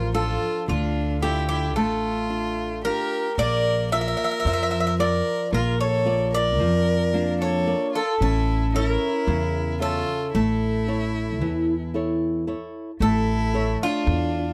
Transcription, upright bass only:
0.00 0.36 A1 medium
0.69 1.76 D2 medium
1.76 2.89 A1 medium
3.38 4.13 A#1 medium
4.45 5.21 F2 medium
5.53 6.61 A#1 loud
6.61 7.73 F2 loud
8.21 8.96 A1 medium
9.27 10.02 E2 medium
10.35 11.41 A1 medium
11.41 12.53 E2 medium
13.00 13.75 A1 medium
14.07 14.53 E2 loud

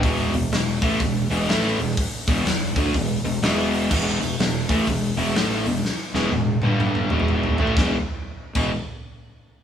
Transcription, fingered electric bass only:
0.03 0.32 E1 medium
0.34 0.51 E1 medium
0.53 0.81 E1 medium
0.82 0.99 A1 medium
1.01 1.29 E1 medium
1.31 1.48 E1 loud
1.49 1.77 A1 loud
1.79 1.96 E1 medium
2.28 2.44 E1 medium
2.46 2.74 E1 medium
2.76 2.93 D2 medium
2.95 3.22 E1 medium
3.24 3.41 E1 medium
3.42 3.87 E1 loud
3.91 4.19 E1 loud
4.22 4.38 E1 medium
4.39 4.67 E1 medium
4.69 4.86 A1 medium
4.88 5.15 E1 medium
5.17 5.34 E1 loud
5.36 5.64 A1 loud
5.66 5.82 E1 medium
6.14 6.31 E1 medium
6.31 6.60 E1 medium
6.61 7.07 G1 medium
7.10 7.55 E1 loud
7.59 7.76 A1 loud
7.77 7.94 E1 loud
8.56 8.72 E1 medium

